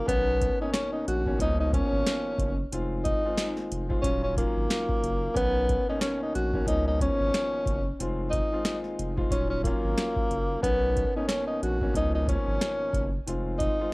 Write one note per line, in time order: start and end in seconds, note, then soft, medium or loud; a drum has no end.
0.05 0.50 B1 loud
0.05 0.54 B2 medium
0.05 0.54 D#3 medium
0.05 0.57 B3 loud
0.05 0.55 C#4 loud
0.05 0.55 A#4 medium
0.05 kick loud
0.05 closed hi-hat loud
0.42 kick medium
0.42 closed hi-hat medium
0.60 1.20 B2 medium
0.60 1.20 D#3 medium
0.60 1.21 A#3 medium
0.60 1.21 C#4 loud
0.60 0.72 D#4 medium
0.73 0.91 C#4 medium
0.73 snare loud
0.73 closed hi-hat medium
0.92 1.05 D#4 medium
1.07 1.34 A#1 medium
1.07 1.37 F#4 medium
1.07 closed hi-hat medium
1.25 1.37 B2 medium
1.25 1.37 D#3 medium
1.25 1.38 A#3 medium
1.25 1.39 C#4 loud
1.25 kick medium
1.38 1.82 C#2 loud
1.38 1.70 B2 loud
1.38 1.70 D#3 medium
1.38 1.70 F3 medium
1.38 1.71 A#3 medium
1.38 1.71 C#4 loud
1.38 1.58 D#4 medium
1.38 kick loud
1.38 closed hi-hat loud
1.60 1.72 D#4 medium
1.72 2.50 B2 medium
1.72 2.50 D#3 medium
1.72 2.50 F3 medium
1.72 2.51 A#3 medium
1.72 2.51 C#4 loud
1.72 2.68 C#4 medium
1.72 kick medium
1.72 closed hi-hat medium
1.92 2.03 G#1 medium
2.06 snare loud
2.06 snare medium
2.06 closed hi-hat medium
2.38 2.65 F#1 medium
2.38 kick loud
2.38 closed hi-hat medium
2.72 3.14 F1 loud
2.72 3.19 D#3 medium
2.72 3.20 G#3 medium
2.72 3.20 C4 medium
2.72 3.20 F4 loud
2.72 closed hi-hat loud
3.04 3.54 D#4 medium
3.04 kick medium
3.04 closed hi-hat medium
3.24 3.84 D#3 loud
3.24 3.84 G#3 medium
3.24 3.85 C4 medium
3.24 3.85 F4 loud
3.38 snare loud
3.38 closed hi-hat loud
3.57 snare soft
3.71 3.98 F1 medium
3.71 closed hi-hat medium
3.88 4.02 D#3 medium
3.88 4.03 G#3 medium
3.88 4.03 C4 medium
3.88 4.04 F4 loud
3.88 kick medium
4.02 4.45 D#1 loud
4.02 4.34 D#3 medium
4.02 4.35 F#3 medium
4.02 4.20 C#4 medium
4.02 4.35 C#4 medium
4.02 4.35 F4 loud
4.02 kick loud
4.02 closed hi-hat loud
4.23 4.35 C#4 medium
4.37 5.29 D#3 loud
4.37 5.29 F#3 medium
4.37 5.32 A#3 medium
4.37 5.30 C#4 medium
4.37 5.30 F4 loud
4.37 kick medium
4.37 closed hi-hat medium
4.56 4.67 G#1 loud
4.70 snare loud
4.70 snare medium
4.70 closed hi-hat medium
4.89 kick loud
5.03 5.29 F#1 loud
5.03 closed hi-hat medium
5.33 5.78 B1 loud
5.33 5.82 B2 medium
5.33 5.82 D#3 medium
5.33 5.83 C#4 loud
5.33 5.82 A#4 medium
5.33 kick loud
5.33 closed hi-hat loud
5.37 5.85 B3 loud
5.69 kick medium
5.69 closed hi-hat medium
5.87 6.47 B2 loud
5.87 6.48 D#3 medium
5.87 6.48 A#3 medium
5.87 6.48 C#4 loud
5.87 6.00 D#4 medium
6.01 6.19 C#4 medium
6.01 snare loud
6.01 closed hi-hat loud
6.23 6.34 D#4 medium
6.35 6.61 A#1 medium
6.35 6.64 F#4 medium
6.35 closed hi-hat medium
6.53 6.64 B2 medium
6.53 6.65 D#3 medium
6.53 6.66 A#3 medium
6.53 6.66 C#4 loud
6.53 kick medium
6.66 7.09 C#2 loud
6.66 6.97 B2 loud
6.66 6.98 D#3 medium
6.66 6.98 F3 medium
6.66 6.98 A#3 medium
6.66 6.98 C#4 loud
6.66 6.85 D#4 medium
6.66 kick loud
6.66 closed hi-hat loud
6.88 7.00 D#4 medium
6.99 7.77 B2 loud
6.99 7.78 D#3 medium
6.99 7.78 F3 medium
6.99 7.78 A#3 medium
6.99 7.78 C#4 loud
6.99 7.96 C#4 loud
6.99 kick medium
6.99 closed hi-hat medium
7.20 7.31 G#1 medium
7.34 snare loud
7.34 snare medium
7.34 closed hi-hat medium
7.66 7.93 F#1 medium
7.66 kick loud
7.66 closed hi-hat medium
7.99 8.41 F1 loud
7.99 8.47 D#3 medium
7.99 8.47 G#3 medium
7.99 8.47 C4 loud
7.99 8.48 F4 loud
7.99 closed hi-hat loud
8.31 8.80 D#4 medium
8.31 kick medium
8.31 closed hi-hat medium
8.52 9.11 D#3 loud
8.52 9.12 G#3 medium
8.52 9.12 C4 medium
8.52 9.12 F4 loud
8.65 snare loud
8.65 closed hi-hat loud
8.84 snare soft
8.99 9.25 F1 loud
8.99 closed hi-hat medium
9.16 9.29 D#3 medium
9.16 9.31 G#3 medium
9.16 9.31 C4 medium
9.16 9.31 F4 loud
9.16 kick medium
9.31 9.73 D#1 loud
9.31 9.62 D#3 medium
9.31 9.62 F#3 medium
9.31 9.49 C#4 medium
9.31 9.63 C#4 medium
9.31 9.63 F4 loud
9.31 kick loud
9.31 closed hi-hat loud
9.50 9.63 C#4 medium
9.64 10.57 D#3 loud
9.64 10.57 F#3 medium
9.64 10.59 A#3 medium
9.64 10.58 C#4 medium
9.64 10.58 F4 loud
9.64 kick loud
9.64 closed hi-hat medium
9.84 9.95 G#1 medium
9.98 snare loud
9.98 snare medium
9.98 closed hi-hat medium
10.16 kick loud
10.31 10.57 F#1 loud
10.31 closed hi-hat medium
10.60 11.05 B1 loud
10.60 11.09 B2 medium
10.60 11.10 D#3 medium
10.60 11.12 B3 loud
10.60 11.10 C#4 loud
10.60 11.10 A#4 medium
10.60 kick loud
10.60 closed hi-hat loud
10.97 kick medium
10.97 closed hi-hat medium
11.15 11.75 B2 medium
11.15 11.75 D#3 medium
11.15 11.76 A#3 medium
11.15 11.76 C#4 loud
11.15 11.27 D#4 medium
11.28 11.46 C#4 medium
11.28 snare loud
11.28 closed hi-hat loud
11.47 11.60 D#4 medium
11.62 11.89 A#1 medium
11.62 11.92 F#4 medium
11.62 closed hi-hat medium
11.81 11.92 B2 medium
11.81 11.92 D#3 medium
11.81 11.94 A#3 medium
11.81 11.94 C#4 loud
11.81 kick loud
11.93 12.37 C#2 loud
11.93 12.25 B2 loud
11.93 12.25 D#3 medium
11.93 12.26 F3 medium
11.93 12.26 A#3 medium
11.93 12.26 C#4 loud
11.93 12.13 D#4 loud
11.93 kick loud
11.93 closed hi-hat loud
12.15 12.27 D#4 medium
12.27 13.05 B2 medium
12.27 13.05 D#3 medium
12.27 13.05 F3 medium
12.27 13.06 A#3 medium
12.27 13.23 C#4 medium
12.27 13.06 C#4 loud
12.27 kick medium
12.27 closed hi-hat medium
12.47 12.58 G#1 medium
12.61 snare loud
12.61 snare medium
12.61 closed hi-hat medium
12.93 13.20 F#1 medium
12.93 kick loud
12.93 closed hi-hat medium
13.27 13.69 F1 loud
13.27 13.74 D#3 medium
13.27 13.75 G#3 medium
13.27 13.75 C4 medium
13.27 13.75 F4 loud
13.27 closed hi-hat loud
13.59 13.93 D#4 medium
13.59 kick medium
13.59 closed hi-hat medium
13.79 13.93 D#3 loud
13.79 13.93 G#3 medium
13.79 13.93 C4 medium
13.79 13.93 F4 loud